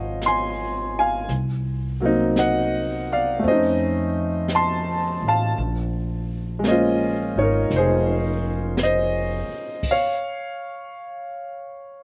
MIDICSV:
0, 0, Header, 1, 5, 480
1, 0, Start_track
1, 0, Key_signature, -5, "minor"
1, 0, Tempo, 1069519
1, 578, Time_signature, 4, 2, 24, 8
1, 5399, End_track
2, 0, Start_track
2, 0, Title_t, "Grand piano"
2, 0, Program_c, 0, 0
2, 0, Control_c, 0, 64, 127
2, 0, Note_on_c, 0, 48, 37
2, 0, Note_on_c, 0, 53, 39
2, 0, Note_on_c, 0, 58, 38
2, 0, Note_on_c, 0, 63, 43
2, 0, Note_on_c, 0, 72, 49
2, 0, Note_on_c, 0, 73, 48
2, 0, Note_on_c, 0, 75, 64
2, 0, Note_on_c, 0, 77, 61
2, 0, Note_on_c, 0, 78, 59
2, 91, Note_off_c, 0, 72, 0
2, 117, Note_on_c, 0, 84, 83
2, 122, Note_off_c, 0, 75, 0
2, 124, Note_on_c, 0, 80, 58
2, 415, Note_off_c, 0, 80, 0
2, 439, Note_off_c, 0, 84, 0
2, 444, Note_on_c, 0, 80, 68
2, 450, Note_off_c, 0, 77, 0
2, 450, Note_on_c, 0, 77, 50
2, 569, Note_off_c, 0, 53, 0
2, 577, Note_off_c, 0, 58, 0
2, 580, Note_off_c, 0, 80, 0
2, 583, Note_off_c, 0, 77, 0
2, 583, Control_c, 0, 64, 0
2, 584, Note_off_c, 0, 48, 0
2, 584, Note_off_c, 0, 78, 0
2, 587, Note_off_c, 0, 73, 0
2, 594, Note_off_c, 0, 63, 0
2, 659, Control_c, 0, 64, 127
2, 899, Note_on_c, 0, 54, 50
2, 906, Note_on_c, 0, 58, 49
2, 917, Note_on_c, 0, 60, 46
2, 923, Note_on_c, 0, 63, 54
2, 1073, Note_on_c, 0, 75, 53
2, 1073, Note_on_c, 0, 78, 69
2, 1369, Note_off_c, 0, 75, 0
2, 1397, Note_off_c, 0, 78, 0
2, 1402, Note_on_c, 0, 74, 48
2, 1404, Note_on_c, 0, 77, 64
2, 1523, Note_on_c, 0, 57, 41
2, 1531, Note_off_c, 0, 60, 0
2, 1538, Note_off_c, 0, 54, 0
2, 1538, Note_on_c, 0, 60, 39
2, 1539, Note_off_c, 0, 74, 0
2, 1540, Note_off_c, 0, 77, 0
2, 1541, Note_off_c, 0, 58, 0
2, 1543, Control_c, 0, 64, 0
2, 1550, Note_off_c, 0, 63, 0
2, 1556, Note_on_c, 0, 61, 38
2, 1561, Note_on_c, 0, 72, 53
2, 1561, Note_on_c, 0, 75, 69
2, 1574, Note_on_c, 0, 63, 47
2, 1618, Control_c, 0, 64, 127
2, 2011, Note_off_c, 0, 72, 0
2, 2042, Note_on_c, 0, 81, 66
2, 2043, Note_off_c, 0, 75, 0
2, 2046, Note_on_c, 0, 84, 83
2, 2333, Note_off_c, 0, 81, 0
2, 2362, Note_off_c, 0, 84, 0
2, 2370, Note_on_c, 0, 77, 52
2, 2372, Note_on_c, 0, 81, 67
2, 2490, Note_off_c, 0, 57, 0
2, 2497, Note_off_c, 0, 60, 0
2, 2503, Note_off_c, 0, 77, 0
2, 2504, Note_off_c, 0, 81, 0
2, 2504, Control_c, 0, 64, 0
2, 2506, Note_off_c, 0, 61, 0
2, 2515, Note_off_c, 0, 63, 0
2, 2572, Control_c, 0, 64, 127
2, 2958, Note_on_c, 0, 56, 51
2, 2975, Note_on_c, 0, 58, 43
2, 2993, Note_on_c, 0, 61, 48
2, 2999, Note_on_c, 0, 75, 71
2, 3007, Note_on_c, 0, 72, 51
2, 3011, Note_on_c, 0, 65, 53
2, 3295, Note_off_c, 0, 72, 0
2, 3310, Note_on_c, 0, 63, 42
2, 3315, Note_on_c, 0, 73, 62
2, 3318, Note_off_c, 0, 75, 0
2, 3329, Note_on_c, 0, 70, 47
2, 3462, Note_off_c, 0, 70, 0
2, 3469, Note_off_c, 0, 73, 0
2, 3483, Note_on_c, 0, 72, 72
2, 3493, Note_on_c, 0, 68, 51
2, 3936, Note_off_c, 0, 68, 0
2, 3960, Note_off_c, 0, 72, 0
2, 3964, Note_on_c, 0, 75, 76
2, 3967, Note_on_c, 0, 72, 58
2, 4405, Note_off_c, 0, 56, 0
2, 4412, Note_off_c, 0, 72, 0
2, 4413, Note_off_c, 0, 58, 0
2, 4420, Note_off_c, 0, 63, 0
2, 4420, Control_c, 0, 64, 0
2, 4422, Note_off_c, 0, 61, 0
2, 4431, Note_off_c, 0, 65, 0
2, 4442, Note_off_c, 0, 75, 0
2, 4448, Note_on_c, 0, 77, 77
2, 4451, Note_on_c, 0, 73, 59
2, 5399, Note_off_c, 0, 73, 0
2, 5399, Note_off_c, 0, 77, 0
2, 5399, End_track
3, 0, Start_track
3, 0, Title_t, "Upright bass"
3, 0, Program_c, 1, 32
3, 0, Note_on_c, 1, 32, 67
3, 562, Note_off_c, 1, 32, 0
3, 577, Note_on_c, 1, 36, 61
3, 1520, Note_off_c, 1, 36, 0
3, 1543, Note_on_c, 1, 41, 70
3, 2324, Note_off_c, 1, 41, 0
3, 2344, Note_on_c, 1, 33, 55
3, 2489, Note_off_c, 1, 33, 0
3, 2503, Note_on_c, 1, 34, 70
3, 3283, Note_off_c, 1, 34, 0
3, 3302, Note_on_c, 1, 32, 56
3, 3447, Note_off_c, 1, 32, 0
3, 3456, Note_on_c, 1, 29, 71
3, 4238, Note_off_c, 1, 29, 0
3, 5399, End_track
4, 0, Start_track
4, 0, Title_t, "Muted upright bass strokes"
4, 4254, Note_on_c, 9, 29, 32
4, 4299, Note_off_c, 9, 29, 0
4, 5399, End_track
5, 0, Start_track
5, 0, Title_t, "Drums"
5, 97, Note_on_c, 9, 25, 33
5, 97, Note_on_c, 9, 38, 40
5, 97, Note_on_c, 9, 44, 47
5, 142, Note_off_c, 9, 38, 0
5, 142, Note_off_c, 9, 44, 0
5, 577, Note_off_c, 9, 25, 0
5, 577, Note_on_c, 9, 25, 36
5, 577, Note_on_c, 9, 38, 24
5, 622, Note_off_c, 9, 38, 0
5, 1059, Note_off_c, 9, 25, 0
5, 1059, Note_on_c, 9, 25, 32
5, 1059, Note_on_c, 9, 38, 36
5, 1059, Note_on_c, 9, 44, 47
5, 1104, Note_off_c, 9, 38, 0
5, 1104, Note_off_c, 9, 44, 0
5, 1537, Note_off_c, 9, 25, 0
5, 1537, Note_on_c, 9, 25, 32
5, 2012, Note_off_c, 9, 25, 0
5, 2012, Note_on_c, 9, 25, 35
5, 2012, Note_on_c, 9, 38, 40
5, 2012, Note_on_c, 9, 44, 53
5, 2057, Note_off_c, 9, 38, 0
5, 2057, Note_off_c, 9, 44, 0
5, 2492, Note_off_c, 9, 25, 0
5, 2492, Note_on_c, 9, 25, 28
5, 2979, Note_off_c, 9, 25, 0
5, 2979, Note_on_c, 9, 25, 33
5, 2979, Note_on_c, 9, 38, 37
5, 2979, Note_on_c, 9, 44, 47
5, 3024, Note_off_c, 9, 38, 0
5, 3024, Note_off_c, 9, 44, 0
5, 3457, Note_off_c, 9, 25, 0
5, 3457, Note_on_c, 9, 25, 29
5, 3457, Note_on_c, 9, 38, 25
5, 3502, Note_off_c, 9, 38, 0
5, 3937, Note_off_c, 9, 25, 0
5, 3937, Note_on_c, 9, 25, 33
5, 3937, Note_on_c, 9, 38, 39
5, 3937, Note_on_c, 9, 44, 49
5, 3982, Note_off_c, 9, 38, 0
5, 3982, Note_off_c, 9, 44, 0
5, 4411, Note_on_c, 9, 49, 58
5, 4412, Note_on_c, 9, 36, 62
5, 4456, Note_off_c, 9, 36, 0
5, 4456, Note_off_c, 9, 49, 0
5, 4640, Note_off_c, 9, 25, 0
5, 5399, End_track
0, 0, End_of_file